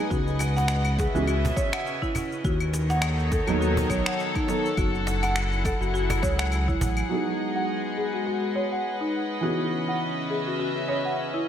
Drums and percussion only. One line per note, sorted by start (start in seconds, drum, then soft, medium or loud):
0.11 kick loud
0.11 shaker soft
0.28 shaker soft
0.39 cajon slap medium
0.39 claves medium
0.39 shaker medium
0.57 cajon slap medium
0.57 shaker soft
0.68 finger snap medium
0.68 shaker soft
0.85 claves medium
0.85 shaker soft
0.99 kick medium
0.99 cajon slap medium
0.99 shaker medium
1.16 shaker soft
1.28 claves medium
1.28 shaker soft
1.45 cajon bass medium
1.45 cajon slap medium
1.45 shaker soft
1.57 kick loud
1.57 shaker medium
1.73 finger snap medium
1.73 claves medium
1.73 shaker soft
1.87 shaker soft
2.02 kick medium
2.02 shaker soft
2.15 cajon bass medium
2.15 claves medium
2.15 shaker medium
2.32 shaker soft
2.44 kick loud
2.44 shaker soft
2.60 claves medium
2.60 shaker soft
2.73 cajon slap medium
2.73 shaker medium
2.90 cajon slap medium
2.90 shaker soft
3.02 finger snap medium
3.02 claves medium
3.02 shaker soft
3.20 shaker soft
3.32 kick loud
3.32 cajon slap medium
3.32 shaker medium
3.48 claves medium
3.48 shaker soft
3.62 shaker soft
3.77 cajon bass medium
3.77 shaker soft
3.90 kick medium
3.90 claves medium
3.90 shaker medium
4.06 finger snap medium
4.06 shaker soft
4.20 shaker soft
4.36 kick loud
4.36 claves medium
4.36 shaker soft
4.48 cajon slap medium
4.48 shaker medium
4.66 shaker soft
4.77 kick loud
4.77 claves medium
4.77 shaker soft
4.95 shaker soft
5.07 cajon slap medium
5.07 shaker medium
5.23 cajon slap medium
5.23 claves medium
5.23 shaker soft
5.36 finger snap medium
5.36 shaker soft
5.53 shaker soft
5.65 kick medium
5.65 cajon slap medium
5.65 claves medium
5.65 shaker medium
5.82 shaker soft
5.95 shaker soft
6.10 cajon bass medium
6.10 cajon slap medium
6.10 claves medium
6.10 shaker soft
6.23 kick loud
6.23 cajon slap medium
6.23 shaker medium
6.39 finger snap medium
6.39 shaker soft
6.52 claves medium
6.52 shaker soft
6.68 kick medium
6.68 shaker soft
6.81 cajon bass medium
6.81 shaker medium
6.97 claves medium
6.97 shaker soft